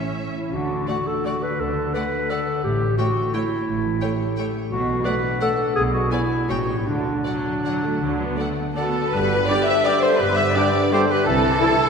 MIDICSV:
0, 0, Header, 1, 13, 480
1, 0, Start_track
1, 0, Key_signature, 2, "major"
1, 0, Tempo, 357995
1, 703, Time_signature, 3, 2, 24, 8
1, 3092, Tempo, 345622
1, 8372, Tempo, 380952
1, 11732, Tempo, 357569
1, 15918, End_track
2, 0, Start_track
2, 0, Title_t, "Violin section"
2, 0, Program_c, 0, 48
2, 0, Note_on_c, 0, 76, 44
2, 418, Note_off_c, 0, 76, 0
2, 1192, Note_on_c, 0, 78, 35
2, 1300, Note_off_c, 0, 78, 0
2, 1689, Note_on_c, 0, 78, 39
2, 1796, Note_off_c, 0, 78, 0
2, 2618, Note_on_c, 0, 78, 35
2, 2725, Note_off_c, 0, 78, 0
2, 3084, Note_on_c, 0, 78, 38
2, 3195, Note_off_c, 0, 78, 0
2, 4026, Note_on_c, 0, 79, 33
2, 4138, Note_off_c, 0, 79, 0
2, 4517, Note_on_c, 0, 79, 40
2, 4628, Note_off_c, 0, 79, 0
2, 5455, Note_on_c, 0, 79, 39
2, 5566, Note_off_c, 0, 79, 0
2, 5954, Note_on_c, 0, 79, 43
2, 6065, Note_off_c, 0, 79, 0
2, 6902, Note_on_c, 0, 78, 44
2, 7013, Note_off_c, 0, 78, 0
2, 7398, Note_on_c, 0, 78, 47
2, 7509, Note_off_c, 0, 78, 0
2, 8376, Note_on_c, 0, 80, 39
2, 8477, Note_off_c, 0, 80, 0
2, 8863, Note_on_c, 0, 79, 44
2, 8964, Note_off_c, 0, 79, 0
2, 9826, Note_on_c, 0, 78, 37
2, 9927, Note_off_c, 0, 78, 0
2, 10320, Note_on_c, 0, 78, 37
2, 10421, Note_off_c, 0, 78, 0
2, 11259, Note_on_c, 0, 78, 36
2, 11360, Note_off_c, 0, 78, 0
2, 11729, Note_on_c, 0, 78, 36
2, 11737, Note_on_c, 0, 69, 56
2, 11836, Note_off_c, 0, 78, 0
2, 12187, Note_off_c, 0, 69, 0
2, 12224, Note_on_c, 0, 71, 65
2, 12699, Note_on_c, 0, 74, 53
2, 12700, Note_off_c, 0, 71, 0
2, 12798, Note_off_c, 0, 74, 0
2, 12968, Note_on_c, 0, 76, 62
2, 13062, Note_off_c, 0, 76, 0
2, 13168, Note_on_c, 0, 74, 61
2, 13268, Note_off_c, 0, 74, 0
2, 13415, Note_on_c, 0, 72, 56
2, 13509, Note_off_c, 0, 72, 0
2, 13638, Note_on_c, 0, 71, 73
2, 13871, Note_off_c, 0, 71, 0
2, 13877, Note_on_c, 0, 76, 62
2, 14121, Note_on_c, 0, 74, 51
2, 14123, Note_off_c, 0, 76, 0
2, 14618, Note_off_c, 0, 74, 0
2, 14622, Note_on_c, 0, 72, 66
2, 14718, Note_off_c, 0, 72, 0
2, 14870, Note_on_c, 0, 71, 58
2, 15077, Note_on_c, 0, 69, 86
2, 15088, Note_off_c, 0, 71, 0
2, 15918, Note_off_c, 0, 69, 0
2, 15918, End_track
3, 0, Start_track
3, 0, Title_t, "Violin section"
3, 0, Program_c, 1, 48
3, 0, Note_on_c, 1, 73, 41
3, 466, Note_off_c, 1, 73, 0
3, 1171, Note_on_c, 1, 74, 41
3, 1278, Note_off_c, 1, 74, 0
3, 1679, Note_on_c, 1, 74, 36
3, 1786, Note_off_c, 1, 74, 0
3, 2615, Note_on_c, 1, 74, 37
3, 2722, Note_off_c, 1, 74, 0
3, 3098, Note_on_c, 1, 74, 37
3, 3209, Note_off_c, 1, 74, 0
3, 4048, Note_on_c, 1, 73, 39
3, 4159, Note_off_c, 1, 73, 0
3, 4549, Note_on_c, 1, 73, 43
3, 4660, Note_off_c, 1, 73, 0
3, 5477, Note_on_c, 1, 73, 40
3, 5588, Note_off_c, 1, 73, 0
3, 5981, Note_on_c, 1, 73, 42
3, 6092, Note_off_c, 1, 73, 0
3, 6915, Note_on_c, 1, 74, 49
3, 7026, Note_off_c, 1, 74, 0
3, 7410, Note_on_c, 1, 74, 41
3, 7521, Note_off_c, 1, 74, 0
3, 8388, Note_on_c, 1, 74, 46
3, 8488, Note_off_c, 1, 74, 0
3, 8853, Note_on_c, 1, 73, 40
3, 8953, Note_off_c, 1, 73, 0
3, 9820, Note_on_c, 1, 74, 39
3, 9921, Note_off_c, 1, 74, 0
3, 10311, Note_on_c, 1, 74, 39
3, 10412, Note_off_c, 1, 74, 0
3, 11235, Note_on_c, 1, 74, 35
3, 11336, Note_off_c, 1, 74, 0
3, 11715, Note_on_c, 1, 74, 33
3, 11724, Note_on_c, 1, 69, 57
3, 11821, Note_off_c, 1, 74, 0
3, 12180, Note_off_c, 1, 69, 0
3, 12202, Note_on_c, 1, 71, 71
3, 12677, Note_on_c, 1, 74, 74
3, 12689, Note_off_c, 1, 71, 0
3, 12925, Note_on_c, 1, 76, 75
3, 12937, Note_off_c, 1, 74, 0
3, 13171, Note_on_c, 1, 74, 73
3, 13182, Note_off_c, 1, 76, 0
3, 13418, Note_on_c, 1, 72, 80
3, 13420, Note_off_c, 1, 74, 0
3, 13634, Note_on_c, 1, 71, 72
3, 13651, Note_off_c, 1, 72, 0
3, 13873, Note_off_c, 1, 71, 0
3, 13875, Note_on_c, 1, 76, 65
3, 14122, Note_off_c, 1, 76, 0
3, 14134, Note_on_c, 1, 74, 64
3, 14625, Note_off_c, 1, 74, 0
3, 14640, Note_on_c, 1, 72, 67
3, 14732, Note_off_c, 1, 72, 0
3, 14866, Note_on_c, 1, 71, 70
3, 15082, Note_on_c, 1, 69, 88
3, 15087, Note_off_c, 1, 71, 0
3, 15918, Note_off_c, 1, 69, 0
3, 15918, End_track
4, 0, Start_track
4, 0, Title_t, "Oboe"
4, 0, Program_c, 2, 68
4, 11731, Note_on_c, 2, 69, 45
4, 12209, Note_on_c, 2, 71, 61
4, 12229, Note_off_c, 2, 69, 0
4, 12702, Note_on_c, 2, 74, 63
4, 12722, Note_off_c, 2, 71, 0
4, 12925, Note_off_c, 2, 74, 0
4, 12933, Note_on_c, 2, 76, 67
4, 13190, Note_on_c, 2, 74, 60
4, 13210, Note_off_c, 2, 76, 0
4, 13420, Note_on_c, 2, 72, 64
4, 13440, Note_off_c, 2, 74, 0
4, 13654, Note_on_c, 2, 71, 74
4, 13675, Note_off_c, 2, 72, 0
4, 13869, Note_on_c, 2, 76, 65
4, 13889, Note_off_c, 2, 71, 0
4, 14115, Note_on_c, 2, 74, 64
4, 14135, Note_off_c, 2, 76, 0
4, 14625, Note_on_c, 2, 72, 58
4, 14645, Note_off_c, 2, 74, 0
4, 14868, Note_on_c, 2, 71, 65
4, 14889, Note_off_c, 2, 72, 0
4, 15068, Note_off_c, 2, 71, 0
4, 15076, Note_on_c, 2, 69, 80
4, 15918, Note_off_c, 2, 69, 0
4, 15918, End_track
5, 0, Start_track
5, 0, Title_t, "Flute section"
5, 0, Program_c, 3, 73
5, 11715, Note_on_c, 3, 66, 48
5, 12175, Note_off_c, 3, 66, 0
5, 12198, Note_on_c, 3, 67, 56
5, 12687, Note_off_c, 3, 67, 0
5, 12693, Note_on_c, 3, 71, 58
5, 12774, Note_off_c, 3, 71, 0
5, 12936, Note_on_c, 3, 72, 61
5, 13016, Note_off_c, 3, 72, 0
5, 13175, Note_on_c, 3, 71, 63
5, 13255, Note_off_c, 3, 71, 0
5, 13422, Note_on_c, 3, 69, 63
5, 13649, Note_off_c, 3, 69, 0
5, 13659, Note_on_c, 3, 67, 58
5, 13740, Note_off_c, 3, 67, 0
5, 13883, Note_on_c, 3, 72, 63
5, 14109, Note_on_c, 3, 71, 58
5, 14121, Note_off_c, 3, 72, 0
5, 14602, Note_off_c, 3, 71, 0
5, 14609, Note_on_c, 3, 69, 70
5, 14854, Note_off_c, 3, 69, 0
5, 14860, Note_on_c, 3, 67, 64
5, 15075, Note_on_c, 3, 64, 72
5, 15088, Note_off_c, 3, 67, 0
5, 15918, Note_off_c, 3, 64, 0
5, 15918, End_track
6, 0, Start_track
6, 0, Title_t, "Trumpet section"
6, 0, Program_c, 4, 61
6, 12693, Note_on_c, 4, 67, 43
6, 12873, Note_off_c, 4, 67, 0
6, 13190, Note_on_c, 4, 67, 45
6, 13360, Note_off_c, 4, 67, 0
6, 14126, Note_on_c, 4, 67, 52
6, 14305, Note_off_c, 4, 67, 0
6, 14622, Note_on_c, 4, 67, 41
6, 14791, Note_off_c, 4, 67, 0
6, 15548, Note_on_c, 4, 69, 46
6, 15728, Note_off_c, 4, 69, 0
6, 15918, End_track
7, 0, Start_track
7, 0, Title_t, "Clarinet"
7, 0, Program_c, 5, 71
7, 0, Note_on_c, 5, 61, 59
7, 231, Note_off_c, 5, 61, 0
7, 475, Note_on_c, 5, 64, 47
7, 707, Note_on_c, 5, 66, 59
7, 727, Note_off_c, 5, 64, 0
7, 1175, Note_off_c, 5, 66, 0
7, 1183, Note_on_c, 5, 66, 58
7, 1437, Note_on_c, 5, 69, 54
7, 1457, Note_off_c, 5, 66, 0
7, 1687, Note_on_c, 5, 66, 60
7, 1708, Note_off_c, 5, 69, 0
7, 1917, Note_on_c, 5, 71, 63
7, 1937, Note_off_c, 5, 66, 0
7, 2153, Note_on_c, 5, 69, 57
7, 2173, Note_off_c, 5, 71, 0
7, 2601, Note_on_c, 5, 71, 63
7, 2621, Note_off_c, 5, 69, 0
7, 3085, Note_on_c, 5, 69, 61
7, 3106, Note_off_c, 5, 71, 0
7, 3540, Note_off_c, 5, 69, 0
7, 3548, Note_on_c, 5, 67, 67
7, 4016, Note_off_c, 5, 67, 0
7, 4023, Note_on_c, 5, 66, 61
7, 4523, Note_on_c, 5, 64, 57
7, 4544, Note_off_c, 5, 66, 0
7, 6207, Note_off_c, 5, 64, 0
7, 6435, Note_on_c, 5, 66, 73
7, 6902, Note_on_c, 5, 71, 70
7, 6923, Note_off_c, 5, 66, 0
7, 7406, Note_off_c, 5, 71, 0
7, 7414, Note_on_c, 5, 69, 70
7, 7873, Note_off_c, 5, 69, 0
7, 7880, Note_on_c, 5, 68, 82
7, 7986, Note_off_c, 5, 68, 0
7, 8128, Note_on_c, 5, 66, 65
7, 8382, Note_on_c, 5, 64, 64
7, 8401, Note_off_c, 5, 66, 0
7, 8851, Note_on_c, 5, 66, 69
7, 8870, Note_off_c, 5, 64, 0
7, 9220, Note_on_c, 5, 64, 54
7, 9239, Note_off_c, 5, 66, 0
7, 9321, Note_on_c, 5, 62, 64
7, 9340, Note_off_c, 5, 64, 0
7, 11730, Note_off_c, 5, 62, 0
7, 12211, Note_on_c, 5, 67, 59
7, 15031, Note_off_c, 5, 67, 0
7, 15082, Note_on_c, 5, 64, 59
7, 15918, Note_off_c, 5, 64, 0
7, 15918, End_track
8, 0, Start_track
8, 0, Title_t, "Harp"
8, 0, Program_c, 6, 46
8, 0, Note_on_c, 6, 45, 37
8, 0, Note_on_c, 6, 52, 27
8, 0, Note_on_c, 6, 61, 32
8, 0, Note_on_c, 6, 64, 30
8, 0, Note_on_c, 6, 73, 29
8, 213, Note_off_c, 6, 64, 0
8, 229, Note_on_c, 6, 64, 31
8, 464, Note_off_c, 6, 61, 0
8, 480, Note_on_c, 6, 61, 29
8, 708, Note_on_c, 6, 50, 40
8, 722, Note_off_c, 6, 64, 0
8, 722, Note_off_c, 6, 73, 0
8, 724, Note_off_c, 6, 52, 0
8, 725, Note_off_c, 6, 45, 0
8, 725, Note_off_c, 6, 61, 0
8, 937, Note_on_c, 6, 62, 31
8, 1186, Note_on_c, 6, 66, 34
8, 1437, Note_on_c, 6, 69, 36
8, 1666, Note_off_c, 6, 66, 0
8, 1891, Note_off_c, 6, 62, 0
8, 1907, Note_on_c, 6, 62, 34
8, 2128, Note_off_c, 6, 50, 0
8, 2144, Note_on_c, 6, 50, 43
8, 2376, Note_on_c, 6, 57, 33
8, 2612, Note_on_c, 6, 66, 34
8, 2846, Note_off_c, 6, 69, 0
8, 2862, Note_on_c, 6, 69, 33
8, 3080, Note_off_c, 6, 66, 0
8, 3096, Note_on_c, 6, 66, 35
8, 3314, Note_off_c, 6, 62, 0
8, 3331, Note_on_c, 6, 62, 38
8, 3559, Note_on_c, 6, 45, 44
8, 3576, Note_off_c, 6, 62, 0
8, 3577, Note_off_c, 6, 66, 0
8, 3580, Note_off_c, 6, 50, 0
8, 3791, Note_on_c, 6, 61, 32
8, 4040, Note_on_c, 6, 67, 33
8, 4267, Note_off_c, 6, 69, 0
8, 4284, Note_on_c, 6, 69, 36
8, 4513, Note_off_c, 6, 67, 0
8, 4529, Note_on_c, 6, 67, 38
8, 4760, Note_off_c, 6, 61, 0
8, 4777, Note_on_c, 6, 61, 39
8, 4985, Note_off_c, 6, 45, 0
8, 5001, Note_on_c, 6, 45, 42
8, 5232, Note_on_c, 6, 52, 34
8, 5459, Note_off_c, 6, 67, 0
8, 5476, Note_on_c, 6, 67, 40
8, 5709, Note_off_c, 6, 69, 0
8, 5726, Note_on_c, 6, 69, 34
8, 5960, Note_off_c, 6, 67, 0
8, 5976, Note_on_c, 6, 67, 37
8, 6199, Note_off_c, 6, 61, 0
8, 6215, Note_on_c, 6, 61, 41
8, 6445, Note_on_c, 6, 47, 48
8, 6461, Note_off_c, 6, 61, 0
8, 6462, Note_off_c, 6, 45, 0
8, 6463, Note_off_c, 6, 52, 0
8, 6463, Note_off_c, 6, 57, 0
8, 6463, Note_off_c, 6, 67, 0
8, 6677, Note_on_c, 6, 62, 36
8, 6916, Note_on_c, 6, 66, 41
8, 7155, Note_off_c, 6, 69, 0
8, 7171, Note_on_c, 6, 69, 43
8, 7400, Note_off_c, 6, 66, 0
8, 7417, Note_on_c, 6, 66, 43
8, 7635, Note_off_c, 6, 62, 0
8, 7652, Note_on_c, 6, 62, 41
8, 7868, Note_off_c, 6, 47, 0
8, 7884, Note_on_c, 6, 47, 51
8, 7902, Note_off_c, 6, 66, 0
8, 7902, Note_off_c, 6, 69, 0
8, 8097, Note_off_c, 6, 62, 0
8, 8114, Note_on_c, 6, 62, 37
8, 8371, Note_on_c, 6, 68, 44
8, 8618, Note_on_c, 6, 71, 40
8, 8859, Note_on_c, 6, 45, 47
8, 8867, Note_off_c, 6, 62, 0
8, 8869, Note_off_c, 6, 68, 0
8, 8870, Note_off_c, 6, 47, 0
8, 9085, Note_off_c, 6, 71, 0
8, 9092, Note_on_c, 6, 67, 37
8, 9105, Note_on_c, 6, 71, 42
8, 9326, Note_on_c, 6, 50, 42
8, 9345, Note_off_c, 6, 67, 0
8, 9346, Note_off_c, 6, 45, 0
8, 9347, Note_off_c, 6, 71, 0
8, 9570, Note_on_c, 6, 62, 32
8, 9817, Note_on_c, 6, 66, 37
8, 10074, Note_on_c, 6, 69, 30
8, 10307, Note_off_c, 6, 66, 0
8, 10322, Note_on_c, 6, 66, 35
8, 10541, Note_off_c, 6, 62, 0
8, 10556, Note_on_c, 6, 62, 36
8, 10758, Note_off_c, 6, 50, 0
8, 10774, Note_on_c, 6, 50, 47
8, 11004, Note_on_c, 6, 57, 32
8, 11231, Note_off_c, 6, 66, 0
8, 11246, Note_on_c, 6, 66, 33
8, 11483, Note_off_c, 6, 69, 0
8, 11498, Note_on_c, 6, 69, 30
8, 11719, Note_off_c, 6, 66, 0
8, 11734, Note_on_c, 6, 66, 33
8, 11971, Note_off_c, 6, 62, 0
8, 11987, Note_on_c, 6, 62, 32
8, 12227, Note_on_c, 6, 43, 47
8, 12236, Note_off_c, 6, 50, 0
8, 12237, Note_off_c, 6, 57, 0
8, 12238, Note_off_c, 6, 66, 0
8, 12241, Note_off_c, 6, 69, 0
8, 12443, Note_off_c, 6, 62, 0
8, 12459, Note_on_c, 6, 62, 42
8, 12704, Note_on_c, 6, 67, 41
8, 12944, Note_off_c, 6, 62, 0
8, 12960, Note_on_c, 6, 62, 44
8, 13185, Note_off_c, 6, 67, 0
8, 13201, Note_on_c, 6, 67, 47
8, 13418, Note_off_c, 6, 62, 0
8, 13434, Note_on_c, 6, 62, 45
8, 13646, Note_off_c, 6, 43, 0
8, 13662, Note_on_c, 6, 43, 52
8, 13884, Note_on_c, 6, 50, 39
8, 14116, Note_off_c, 6, 67, 0
8, 14356, Note_off_c, 6, 62, 0
8, 14372, Note_on_c, 6, 62, 44
8, 14626, Note_on_c, 6, 67, 47
8, 14841, Note_off_c, 6, 62, 0
8, 14857, Note_on_c, 6, 62, 47
8, 15085, Note_on_c, 6, 48, 55
8, 15105, Note_off_c, 6, 50, 0
8, 15105, Note_off_c, 6, 62, 0
8, 15108, Note_off_c, 6, 43, 0
8, 15108, Note_off_c, 6, 67, 0
8, 15549, Note_on_c, 6, 64, 48
8, 15800, Note_on_c, 6, 69, 44
8, 15918, Note_off_c, 6, 48, 0
8, 15918, Note_off_c, 6, 64, 0
8, 15918, Note_off_c, 6, 69, 0
8, 15918, End_track
9, 0, Start_track
9, 0, Title_t, "French horn section"
9, 0, Program_c, 7, 60
9, 12715, Note_on_c, 7, 62, 49
9, 12717, Note_on_c, 7, 55, 48
9, 12890, Note_off_c, 7, 62, 0
9, 12892, Note_off_c, 7, 55, 0
9, 13187, Note_on_c, 7, 55, 52
9, 13191, Note_on_c, 7, 62, 49
9, 13357, Note_off_c, 7, 55, 0
9, 13360, Note_off_c, 7, 62, 0
9, 14112, Note_on_c, 7, 62, 50
9, 14114, Note_on_c, 7, 55, 55
9, 14293, Note_off_c, 7, 62, 0
9, 14295, Note_off_c, 7, 55, 0
9, 14591, Note_on_c, 7, 55, 48
9, 14593, Note_on_c, 7, 62, 54
9, 14767, Note_off_c, 7, 55, 0
9, 14769, Note_off_c, 7, 62, 0
9, 15528, Note_on_c, 7, 64, 53
9, 15544, Note_on_c, 7, 52, 53
9, 15713, Note_off_c, 7, 64, 0
9, 15725, Note_off_c, 7, 52, 0
9, 15918, End_track
10, 0, Start_track
10, 0, Title_t, "Viola section"
10, 0, Program_c, 8, 48
10, 0, Note_on_c, 8, 61, 49
10, 476, Note_off_c, 8, 61, 0
10, 1182, Note_on_c, 8, 57, 34
10, 1289, Note_off_c, 8, 57, 0
10, 1675, Note_on_c, 8, 57, 33
10, 1782, Note_off_c, 8, 57, 0
10, 2622, Note_on_c, 8, 57, 38
10, 2729, Note_off_c, 8, 57, 0
10, 3095, Note_on_c, 8, 57, 33
10, 3206, Note_off_c, 8, 57, 0
10, 4036, Note_on_c, 8, 57, 38
10, 4147, Note_off_c, 8, 57, 0
10, 4531, Note_on_c, 8, 57, 39
10, 4642, Note_off_c, 8, 57, 0
10, 5483, Note_on_c, 8, 57, 40
10, 5594, Note_off_c, 8, 57, 0
10, 5976, Note_on_c, 8, 57, 37
10, 6087, Note_off_c, 8, 57, 0
10, 6927, Note_on_c, 8, 57, 46
10, 7038, Note_off_c, 8, 57, 0
10, 7414, Note_on_c, 8, 57, 43
10, 7525, Note_off_c, 8, 57, 0
10, 8373, Note_on_c, 8, 59, 42
10, 8474, Note_off_c, 8, 59, 0
10, 8864, Note_on_c, 8, 59, 34
10, 8965, Note_off_c, 8, 59, 0
10, 9815, Note_on_c, 8, 54, 50
10, 10280, Note_off_c, 8, 54, 0
10, 10318, Note_on_c, 8, 54, 48
10, 10547, Note_off_c, 8, 54, 0
10, 10552, Note_on_c, 8, 57, 47
10, 10776, Note_off_c, 8, 57, 0
10, 10782, Note_on_c, 8, 54, 50
10, 11000, Note_on_c, 8, 59, 50
10, 11001, Note_off_c, 8, 54, 0
10, 11234, Note_on_c, 8, 57, 44
10, 11242, Note_off_c, 8, 59, 0
10, 11726, Note_off_c, 8, 57, 0
10, 11727, Note_on_c, 8, 59, 37
10, 12207, Note_off_c, 8, 59, 0
10, 12699, Note_on_c, 8, 62, 44
10, 12704, Note_on_c, 8, 55, 39
10, 12806, Note_off_c, 8, 62, 0
10, 12811, Note_off_c, 8, 55, 0
10, 13193, Note_on_c, 8, 62, 41
10, 13195, Note_on_c, 8, 55, 42
10, 13300, Note_off_c, 8, 62, 0
10, 13303, Note_off_c, 8, 55, 0
10, 14127, Note_on_c, 8, 62, 45
10, 14131, Note_on_c, 8, 55, 44
10, 14235, Note_off_c, 8, 62, 0
10, 14239, Note_off_c, 8, 55, 0
10, 14621, Note_on_c, 8, 55, 40
10, 14628, Note_on_c, 8, 62, 42
10, 14729, Note_off_c, 8, 55, 0
10, 14735, Note_off_c, 8, 62, 0
10, 15558, Note_on_c, 8, 64, 43
10, 15563, Note_on_c, 8, 52, 53
10, 15665, Note_off_c, 8, 64, 0
10, 15671, Note_off_c, 8, 52, 0
10, 15918, End_track
11, 0, Start_track
11, 0, Title_t, "Bassoon"
11, 0, Program_c, 10, 70
11, 12228, Note_on_c, 10, 50, 41
11, 15039, Note_off_c, 10, 50, 0
11, 15086, Note_on_c, 10, 52, 48
11, 15918, Note_off_c, 10, 52, 0
11, 15918, End_track
12, 0, Start_track
12, 0, Title_t, "Cello section"
12, 0, Program_c, 11, 48
12, 0, Note_on_c, 11, 45, 36
12, 467, Note_off_c, 11, 45, 0
12, 697, Note_on_c, 11, 50, 44
12, 1091, Note_off_c, 11, 50, 0
12, 2146, Note_on_c, 11, 50, 44
12, 2530, Note_off_c, 11, 50, 0
12, 3564, Note_on_c, 11, 45, 48
12, 3951, Note_off_c, 11, 45, 0
12, 4993, Note_on_c, 11, 45, 44
12, 5384, Note_off_c, 11, 45, 0
12, 6439, Note_on_c, 11, 47, 54
12, 6836, Note_off_c, 11, 47, 0
12, 7877, Note_on_c, 11, 47, 47
12, 8282, Note_off_c, 11, 47, 0
12, 8851, Note_on_c, 11, 45, 44
12, 9246, Note_off_c, 11, 45, 0
12, 9326, Note_on_c, 11, 50, 47
12, 9726, Note_off_c, 11, 50, 0
12, 10771, Note_on_c, 11, 50, 41
12, 11159, Note_off_c, 11, 50, 0
12, 12210, Note_on_c, 11, 43, 52
12, 12609, Note_off_c, 11, 43, 0
12, 13653, Note_on_c, 11, 43, 54
12, 14043, Note_off_c, 11, 43, 0
12, 15076, Note_on_c, 11, 48, 57
12, 15472, Note_off_c, 11, 48, 0
12, 15918, End_track
13, 0, Start_track
13, 0, Title_t, "Double bass section"
13, 0, Program_c, 12, 48
13, 0, Note_on_c, 12, 33, 44
13, 468, Note_off_c, 12, 33, 0
13, 696, Note_on_c, 12, 38, 46
13, 1090, Note_off_c, 12, 38, 0
13, 2138, Note_on_c, 12, 38, 42
13, 2527, Note_off_c, 12, 38, 0
13, 3563, Note_on_c, 12, 33, 43
13, 3951, Note_off_c, 12, 33, 0
13, 4999, Note_on_c, 12, 33, 48
13, 5387, Note_off_c, 12, 33, 0
13, 6437, Note_on_c, 12, 35, 54
13, 6835, Note_off_c, 12, 35, 0
13, 7878, Note_on_c, 12, 35, 51
13, 8282, Note_off_c, 12, 35, 0
13, 8844, Note_on_c, 12, 33, 58
13, 9242, Note_off_c, 12, 33, 0
13, 9317, Note_on_c, 12, 38, 55
13, 9722, Note_off_c, 12, 38, 0
13, 10765, Note_on_c, 12, 38, 43
13, 11157, Note_off_c, 12, 38, 0
13, 12220, Note_on_c, 12, 31, 58
13, 12615, Note_off_c, 12, 31, 0
13, 13661, Note_on_c, 12, 31, 57
13, 14047, Note_off_c, 12, 31, 0
13, 15082, Note_on_c, 12, 36, 60
13, 15475, Note_off_c, 12, 36, 0
13, 15918, End_track
0, 0, End_of_file